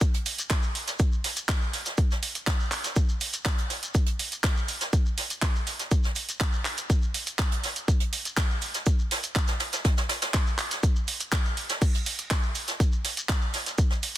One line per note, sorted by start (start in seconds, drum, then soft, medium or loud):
0.01 kick loud
0.01 closed hi-hat medium
0.01 shekere medium
0.01 shaker loud
0.14 closed hi-hat soft
0.14 shekere soft
0.26 open hi-hat loud
0.26 shaker medium
0.38 closed hi-hat medium
0.38 shekere medium
0.50 kick loud
0.50 snare loud
0.50 clap loud
0.50 closed hi-hat medium
0.50 shekere medium
0.50 shaker medium
0.63 shekere soft
0.75 open hi-hat loud
0.75 shaker medium
0.87 snare medium
0.87 closed hi-hat medium
0.87 shekere medium
0.99 kick loud
0.99 closed hi-hat medium
0.99 shekere medium
0.99 shaker medium
1.12 shekere soft
1.24 snare soft
1.24 open hi-hat loud
1.24 shaker medium
1.36 closed hi-hat medium
1.36 shekere medium
1.48 kick loud
1.48 snare loud
1.48 clap loud
1.48 closed hi-hat medium
1.48 shaker loud
1.48 shekere medium
1.61 shekere soft
1.73 snare soft
1.73 open hi-hat loud
1.73 shaker medium
1.85 snare soft
1.85 closed hi-hat medium
1.85 shekere medium
1.97 kick loud
1.97 closed hi-hat medium
1.97 shekere medium
1.97 shaker medium
2.11 snare soft
2.11 shekere soft
2.22 open hi-hat loud
2.22 shaker medium
2.35 closed hi-hat medium
2.35 shekere medium
2.47 kick loud
2.47 snare loud
2.47 clap loud
2.47 closed hi-hat medium
2.47 shaker medium
2.47 shekere medium
2.60 shekere soft
2.72 clap medium
2.72 open hi-hat loud
2.72 shaker medium
2.84 snare medium
2.84 closed hi-hat medium
2.84 shekere medium
2.96 kick loud
2.96 closed hi-hat medium
2.96 shekere medium
2.96 shaker medium
3.09 shekere soft
3.21 open hi-hat loud
3.21 shaker medium
3.33 closed hi-hat medium
3.33 shekere medium
3.45 kick loud
3.45 snare loud
3.45 clap loud
3.45 closed hi-hat soft
3.45 shaker loud
3.58 closed hi-hat soft
3.58 shekere soft
3.70 snare medium
3.70 open hi-hat loud
3.70 shaker medium
3.83 closed hi-hat medium
3.83 shekere medium
3.94 kick loud
3.94 closed hi-hat medium
3.94 shekere medium
3.94 shaker loud
4.06 closed hi-hat soft
4.06 shekere soft
4.19 open hi-hat loud
4.19 shaker medium
4.32 closed hi-hat medium
4.32 shekere medium
4.44 kick loud
4.44 snare loud
4.44 clap loud
4.44 closed hi-hat medium
4.44 shekere medium
4.44 shaker medium
4.57 shekere soft
4.68 open hi-hat loud
4.68 shaker medium
4.81 snare medium
4.81 closed hi-hat medium
4.81 shekere medium
4.93 kick loud
4.93 closed hi-hat medium
4.93 shekere medium
4.93 shaker medium
5.06 shekere soft
5.18 snare soft
5.18 open hi-hat loud
5.18 shaker medium
5.30 closed hi-hat medium
5.30 shekere medium
5.42 kick loud
5.42 snare loud
5.42 clap loud
5.42 closed hi-hat medium
5.42 shekere medium
5.42 shaker medium
5.56 shekere soft
5.67 snare soft
5.67 open hi-hat medium
5.67 shaker medium
5.79 snare soft
5.79 closed hi-hat medium
5.79 shekere medium
5.91 kick loud
5.91 closed hi-hat medium
5.91 shaker medium
5.91 shekere medium
6.03 snare soft
6.03 shekere soft
6.15 open hi-hat loud
6.15 shaker medium
6.29 closed hi-hat medium
6.29 shekere medium
6.40 kick loud
6.40 snare loud
6.40 clap loud
6.40 closed hi-hat medium
6.40 shekere medium
6.40 shaker medium
6.53 shekere soft
6.65 clap medium
6.65 open hi-hat medium
6.77 closed hi-hat medium
6.77 shekere medium
6.90 kick loud
6.90 closed hi-hat medium
6.90 shaker medium
6.90 shekere medium
7.02 shekere soft
7.14 open hi-hat loud
7.14 shaker medium
7.26 closed hi-hat medium
7.26 shekere medium
7.38 kick loud
7.38 snare loud
7.38 clap loud
7.38 closed hi-hat medium
7.38 shaker medium
7.38 shekere medium
7.52 closed hi-hat soft
7.52 shekere soft
7.64 snare medium
7.64 open hi-hat medium
7.64 shaker medium
7.76 closed hi-hat medium
7.76 shekere medium
7.88 kick loud
7.88 closed hi-hat medium
7.88 shekere medium
7.88 shaker medium
8.00 closed hi-hat soft
8.00 shekere soft
8.13 open hi-hat loud
8.13 shaker medium
8.25 closed hi-hat medium
8.25 shekere medium
8.37 kick loud
8.37 snare loud
8.37 clap loud
8.37 closed hi-hat medium
8.37 shekere medium
8.37 shaker medium
8.50 shekere soft
8.61 open hi-hat medium
8.61 shaker medium
8.74 snare medium
8.74 closed hi-hat medium
8.74 shekere medium
8.86 kick loud
8.86 closed hi-hat medium
8.86 shaker loud
8.86 shekere medium
8.99 shekere soft
9.11 snare loud
9.11 open hi-hat loud
9.11 shaker medium
9.23 closed hi-hat medium
9.23 shekere medium
9.36 kick loud
9.36 snare soft
9.36 clap loud
9.36 closed hi-hat medium
9.36 shaker medium
9.36 shekere medium
9.47 snare loud
9.47 shaker medium
9.47 shekere soft
9.60 snare loud
9.60 open hi-hat medium
9.60 shaker medium
9.73 snare loud
9.73 closed hi-hat medium
9.73 shaker medium
9.73 shekere medium
9.84 kick loud
9.84 snare loud
9.84 closed hi-hat medium
9.84 shaker medium
9.84 shekere medium
9.98 snare loud
9.98 shekere soft
9.98 shaker medium
10.09 snare loud
10.09 open hi-hat loud
10.09 shaker medium
10.22 snare loud
10.22 closed hi-hat medium
10.22 shekere medium
10.22 shaker medium
10.34 kick loud
10.34 snare loud
10.34 clap loud
10.34 closed hi-hat medium
10.34 shekere medium
10.34 shaker medium
10.47 shekere soft
10.59 clap medium
10.59 open hi-hat medium
10.59 shaker medium
10.71 snare medium
10.71 closed hi-hat medium
10.71 shekere medium
10.83 kick loud
10.83 closed hi-hat medium
10.83 shaker medium
10.83 shekere medium
10.96 shekere soft
11.07 open hi-hat loud
11.07 shaker medium
11.20 closed hi-hat medium
11.20 shekere medium
11.32 kick loud
11.32 snare loud
11.32 clap loud
11.32 closed hi-hat medium
11.32 shekere medium
11.32 shaker medium
11.45 shekere soft
11.57 open hi-hat medium
11.57 shaker medium
11.69 snare loud
11.69 closed hi-hat medium
11.69 shekere medium
11.69 shaker medium
11.82 kick loud
11.82 closed hi-hat medium
11.82 crash medium
11.82 shekere medium
11.82 shaker medium
11.94 closed hi-hat soft
11.94 shekere soft
12.06 open hi-hat loud
12.06 shaker medium
12.18 closed hi-hat medium
12.18 shekere medium
12.31 kick loud
12.31 snare loud
12.31 clap loud
12.31 closed hi-hat medium
12.31 shaker medium
12.31 shekere medium
12.43 shekere soft
12.55 open hi-hat medium
12.55 shaker medium
12.68 snare medium
12.68 closed hi-hat medium
12.68 shekere medium
12.80 kick loud
12.80 closed hi-hat medium
12.80 shaker medium
12.80 shekere medium
12.92 shekere soft
13.04 snare soft
13.04 open hi-hat loud
13.04 shaker medium
13.17 closed hi-hat medium
13.17 shekere medium
13.29 kick loud
13.29 snare loud
13.29 clap loud
13.29 closed hi-hat medium
13.29 shaker medium
13.29 shekere medium
13.41 shekere soft
13.54 snare soft
13.54 open hi-hat loud
13.54 shaker medium
13.66 snare soft
13.66 closed hi-hat medium
13.66 shekere medium
13.78 kick loud
13.78 closed hi-hat medium
13.78 shaker loud
13.78 shekere medium
13.90 snare soft
13.90 shekere soft
14.03 open hi-hat loud
14.03 shaker medium